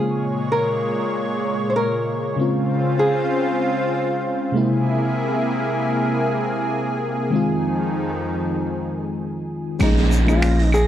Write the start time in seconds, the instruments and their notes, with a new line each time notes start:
Already playing: analog synth pad A#2 G#3 C#5, fm electric piano C#3 G#3 A#3 F4, nylon-string guitar G#4
0.52 nylon-string guitar A#4
1.70 nylon-string guitar C5
1.76 nylon-string guitar A#4
2.36 fm electric piano C#3 G#3 C4, analog synth pad C#3 C4 F4
2.41 fm electric piano F4
2.99 nylon-string guitar G#4
4.52 fm electric piano C3 G#3 A#3, analog synth pad C3 A#3 E4 G#4
4.57 fm electric piano E4
7.30 analog synth pad F2 D#3, fm electric piano D#3 G#3 C4
7.36 fm electric piano F4
9.79 sub bass A#1, fm electric piano F3 A#3 C#4 G#4, nylon-string guitar D#4, synth texture A#6, kick, open hi-hat, downlifter, high conga, claves, shaker
9.97 open hi-hat
10.12 shaker
10.25 fm electric piano F3 A#3 C#4, nylon-string guitar F4, high conga, claves
10.29 fm electric piano G#4, shaker
10.42 finger snap, open hi-hat, shaker
10.59 open hi-hat
10.72 nylon-string guitar G#4, claves, shaker